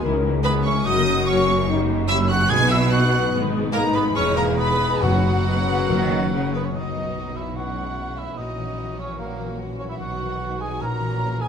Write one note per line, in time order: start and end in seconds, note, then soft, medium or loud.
0.02 0.84 C#2 medium
0.02 0.88 C#3 medium
0.02 0.13 E3 medium
0.02 0.13 E4 medium
0.02 0.43 A#4 loud
0.14 0.24 G#3 medium
0.14 0.24 C#4 medium
0.14 1.15 C#4 medium
0.24 0.35 E3 medium
0.24 0.88 G#3 medium
0.24 0.35 E4 medium
0.35 0.45 G#3 medium
0.35 0.45 C#4 medium
0.35 0.54 E4 medium
0.43 0.55 E3 medium
0.43 0.63 B3 medium
0.43 0.55 E4 medium
0.43 0.85 G#4 medium
0.43 0.87 G#4 medium
0.43 0.51 B4 loud
0.43 0.53 B5 loud
0.43 0.51 B5 medium
0.55 0.65 G#3 medium
0.55 0.65 C#4 medium
0.55 0.88 E4 medium
0.64 0.76 E3 medium
0.64 0.88 C#4 medium
0.64 0.76 E4 medium
0.64 0.73 C#5 medium
0.64 0.88 E5 medium
0.64 0.85 C#6 loud
0.64 0.87 C#6 medium
0.76 0.86 G#3 medium
0.76 0.86 C#4 medium
0.76 0.88 G#5 medium
0.85 2.47 F#1 loud
0.85 1.67 F#2 medium
0.85 2.47 F#2 loud
0.85 0.96 C#4 medium
0.85 1.27 D#4 loud
0.85 1.51 F#4 loud
0.85 0.96 F#4 medium
0.85 1.26 D#5 loud
0.85 1.27 D#6 loud
0.85 1.28 D#6 medium
0.96 1.70 C#3 medium
0.96 1.07 A#3 medium
0.96 1.07 A#4 medium
1.06 1.88 A#3 medium
1.06 1.17 C#4 medium
1.06 1.17 F#4 medium
1.17 1.27 A#3 medium
1.17 1.98 C#4 medium
1.17 1.27 A#4 medium
1.26 1.68 C#4 loud
1.26 1.38 C#4 medium
1.26 2.90 F#4 medium
1.26 1.38 F#4 medium
1.26 1.67 C#5 loud
1.26 1.68 C#6 medium
1.26 1.68 C#6 loud
1.38 1.48 A#3 medium
1.38 2.19 A#4 medium
1.38 1.48 A#4 medium
1.48 1.59 C#4 medium
1.48 1.59 F#4 medium
1.48 2.29 C#5 medium
1.58 1.69 A#3 medium
1.58 1.69 A#4 medium
1.58 3.21 F#5 medium
1.68 2.52 F#2 medium
1.68 1.78 G3 medium
1.68 2.08 D#4 loud
1.68 1.79 G4 medium
1.79 2.52 C#3 medium
1.79 1.90 A#3 medium
1.79 1.90 F#4 medium
1.89 2.00 G3 medium
1.89 2.52 A#3 medium
1.89 2.00 G4 medium
1.99 2.10 A#3 medium
1.99 2.52 C#4 medium
1.99 2.10 F#4 medium
2.08 2.20 G3 medium
2.08 2.50 C#4 medium
2.08 2.30 E4 loud
2.08 2.52 G4 medium
2.08 2.19 G4 medium
2.08 2.16 E5 loud
2.08 2.17 E6 loud
2.08 2.28 E6 medium
2.19 2.30 A#3 medium
2.19 2.30 F#4 medium
2.19 2.52 A#4 medium
2.29 2.40 G3 medium
2.29 2.51 F#4 loud
2.29 2.40 G4 medium
2.29 2.52 C#5 medium
2.29 2.50 F#5 loud
2.29 2.49 F#6 loud
2.29 2.51 F#6 loud
2.40 2.50 A#3 medium
2.40 2.49 F#4 medium
2.40 2.52 G5 medium
2.49 3.32 B1 loud
2.49 3.32 B2 loud
2.49 3.08 B2 loud
2.49 3.34 B2 loud
2.49 2.60 B3 medium
2.49 3.72 B3 medium
2.49 2.60 F#4 medium
2.49 2.69 G#4 loud
2.49 2.70 G#5 loud
2.49 2.70 G#6 loud
2.61 3.34 F#3 medium
2.61 2.71 D#4 medium
2.61 2.71 B4 medium
2.69 3.52 B3 medium
2.69 2.81 B3 medium
2.69 2.90 E4 medium
2.69 2.81 F#4 medium
2.69 2.91 E5 loud
2.69 2.91 E6 loud
2.69 2.77 E6 loud
2.82 2.92 D#4 medium
2.82 2.92 B4 medium
2.91 3.01 B3 medium
2.91 3.32 F#4 loud
2.91 3.34 F#4 medium
2.91 3.01 F#4 medium
2.91 3.33 F#5 loud
2.91 3.32 F#6 loud
2.91 3.32 F#6 medium
3.03 3.12 D#4 medium
3.03 3.12 B4 medium
3.13 3.23 B3 medium
3.13 3.23 F#4 medium
3.13 3.94 D#5 medium
3.22 3.33 D#4 medium
3.22 3.33 B4 medium
3.22 3.34 F#5 medium
3.32 4.15 G#1 medium
3.32 4.14 G#2 medium
3.32 4.18 G#2 medium
3.32 3.43 B3 medium
3.32 3.43 G#4 medium
3.43 4.18 D#3 medium
3.43 3.54 D#4 medium
3.43 3.54 B4 medium
3.53 3.64 B3 medium
3.53 4.37 B3 medium
3.53 3.64 G#4 medium
3.64 4.47 D#4 medium
3.64 3.74 D#4 medium
3.64 3.75 B4 medium
3.73 3.83 A#3 loud
3.73 3.84 B3 medium
3.73 4.15 D#4 medium
3.73 3.84 G#4 medium
3.73 3.81 A#4 loud
3.73 3.93 A#5 loud
3.73 3.97 A#5 loud
3.85 3.95 D#4 medium
3.85 4.69 B4 medium
3.85 3.96 B4 medium
3.94 4.04 B3 medium
3.94 4.06 B3 medium
3.94 4.06 G#4 medium
3.94 4.02 B4 medium
3.94 4.80 D#5 medium
3.94 4.16 B5 loud
3.94 4.18 B5 medium
4.06 4.17 D#4 medium
4.06 4.17 B4 medium
4.06 4.91 G#5 medium
4.15 5.03 E1 medium
4.15 5.03 E2 medium
4.15 5.05 E2 medium
4.15 4.38 C#4 loud
4.15 4.26 E4 medium
4.15 5.01 G#4 loud
4.15 4.27 G#4 medium
4.15 4.37 C#5 loud
4.15 4.23 C#6 loud
4.15 4.38 C#6 medium
4.27 5.05 B2 medium
4.27 4.38 D#4 medium
4.27 4.38 B4 medium
4.36 4.57 A#3 loud
4.36 5.23 B3 medium
4.36 4.48 E4 medium
4.36 4.48 G#4 medium
4.36 4.59 A#4 medium
4.36 4.44 A#5 loud
4.36 4.58 A#5 medium
4.47 4.59 D#4 medium
4.47 5.05 D#4 medium
4.47 4.59 B4 medium
4.57 5.04 B3 loud
4.57 4.69 E4 medium
4.57 4.69 G#4 medium
4.57 5.05 G#4 medium
4.57 5.02 B4 loud
4.57 5.02 B5 loud
4.57 5.01 B5 loud
4.70 4.81 D#4 medium
4.70 4.81 B4 medium
4.70 5.55 B4 medium
4.81 4.92 E4 medium
4.81 4.92 G#4 medium
4.81 5.04 D#5 medium
4.91 5.02 D#4 medium
4.91 5.00 B4 medium
4.91 5.05 G#5 medium
5.02 6.52 F#1 medium
5.02 5.41 F#2 medium
5.02 5.88 F#2 medium
5.02 5.64 F#2 loud
5.02 6.54 F#3 loud
5.02 5.12 B3 medium
5.02 6.51 F#4 medium
5.02 6.54 F#4 medium
5.02 5.12 B4 medium
5.02 6.51 F#5 medium
5.02 6.54 F#5 loud
5.12 5.91 C#3 medium
5.12 5.24 C#4 medium
5.12 5.24 C#5 medium
5.24 5.35 B3 medium
5.24 5.91 B3 medium
5.24 5.35 B4 medium
5.34 5.46 C#4 medium
5.34 6.20 C#4 medium
5.34 5.46 C#5 medium
5.44 5.54 B2 medium
5.44 5.55 B3 medium
5.44 6.30 F#4 medium
5.44 5.55 B4 medium
5.56 5.67 C#4 medium
5.56 5.91 B4 medium
5.56 5.67 C#5 medium
5.67 5.89 C#3 medium
5.67 5.78 B3 medium
5.67 5.79 B4 medium
5.67 6.52 C#5 medium
5.78 5.89 C#4 medium
5.78 5.89 C#5 medium
5.89 6.77 F#2 medium
5.89 6.50 F#2 loud
5.89 6.32 D#3 medium
5.89 5.99 A#3 medium
5.89 5.99 A#4 medium
5.99 6.77 C#3 medium
5.99 6.11 C#4 medium
5.99 6.11 C#5 medium
6.10 6.21 A#3 medium
6.10 6.77 A#3 medium
6.10 6.21 A#4 medium
6.21 6.32 C#4 medium
6.21 6.32 C#5 medium
6.31 6.75 C#3 medium
6.31 6.42 A#3 medium
6.31 7.35 F#4 medium
6.31 6.42 A#4 medium
6.42 6.54 C#4 medium
6.42 6.77 A#4 medium
6.42 6.53 C#5 medium
6.53 6.64 A#3 medium
6.53 6.67 B3 medium
6.53 6.64 A#4 medium
6.53 6.64 B4 medium
6.53 6.67 B4 medium
6.53 6.77 C#5 medium
6.64 6.75 C#4 medium
6.64 6.77 C#4 soft
6.64 6.75 C#5 medium
6.64 6.74 C#5 medium
6.64 6.76 C#5 medium
6.64 7.58 F#5 medium
6.73 8.33 B1 soft
6.73 8.33 B2 soft
6.73 7.55 B2 soft
6.73 7.52 D#3 soft
6.73 7.52 F#3 soft
6.73 7.52 B3 soft
6.73 7.53 D#4 soft
6.73 7.38 D#4 medium
6.73 7.52 F#4 soft
6.73 7.35 D#5 medium
6.95 7.58 F#3 soft
7.16 7.58 D#4 soft
7.36 7.55 E4 medium
7.36 7.58 F#4 soft
7.36 7.58 E5 medium
7.36 7.57 E5 medium
7.55 8.39 B2 soft
7.55 8.35 E3 soft
7.55 9.95 E3 soft
7.55 8.34 G#3 soft
7.55 8.35 C#4 soft
7.55 9.95 C#4 soft
7.55 8.33 E4 soft
7.55 8.19 F#4 medium
7.55 8.17 F#5 soft
7.55 8.17 F#5 medium
7.77 8.39 B3 soft
7.97 8.77 C#4 soft
8.16 10.01 E4 soft
8.16 8.39 E4 medium
8.16 8.37 E5 medium
8.16 8.38 E5 medium
8.36 9.99 A#1 soft
8.36 9.99 A#2 soft
8.36 9.17 A#2 soft
8.36 9.16 E3 soft
8.36 11.48 F#3 soft
8.36 8.98 D#4 medium
8.36 9.17 F#4 soft
8.36 11.48 F#4 soft
8.36 8.97 D#5 medium
8.36 8.98 D#5 medium
8.58 9.38 E3 soft
8.78 9.58 C#4 soft
8.98 9.17 C#4 medium
8.98 9.78 F#4 soft
8.98 9.18 C#5 medium
8.98 9.19 C#5 medium
9.18 10.01 A#2 soft
9.18 9.98 E3 soft
9.18 9.58 A#3 medium
9.18 9.98 F#4 soft
9.18 9.58 A#4 soft
9.18 9.58 A#4 medium
9.39 10.01 E3 soft
9.59 10.01 C#4 soft
9.78 9.83 C#4 soft
9.78 10.58 F#4 soft
9.78 9.88 C#5 soft
9.78 9.83 C#5 medium
9.89 9.93 E4 soft
9.89 9.99 E5 medium
9.89 10.00 E5 medium
9.99 10.79 B1 medium
9.99 10.78 B2 soft
9.99 10.82 B2 soft
9.99 10.76 D#3 soft
9.99 10.80 D#3 medium
9.99 10.76 B3 medium
9.99 10.58 F#4 medium
9.99 10.78 F#4 medium
9.99 10.62 F#5 medium
9.99 10.59 F#5 medium
10.19 10.82 B3 soft
10.39 10.82 D#4 soft
10.59 11.38 F#4 soft
10.59 10.83 G#4 medium
10.59 10.80 G#5 medium
10.59 10.82 G#5 medium
10.80 11.48 A#1 medium
10.80 11.48 A#2 medium
10.80 11.48 E3 medium
10.80 11.48 C#4 medium
10.80 11.48 F#4 soft
10.80 11.42 A#4 medium
10.80 11.40 A#5 medium
10.80 11.41 A#5 medium
11.00 11.48 E3 soft
11.21 11.48 E4 soft
11.40 11.48 F#4 soft
11.40 11.48 G#4 medium
11.40 11.48 G#5 medium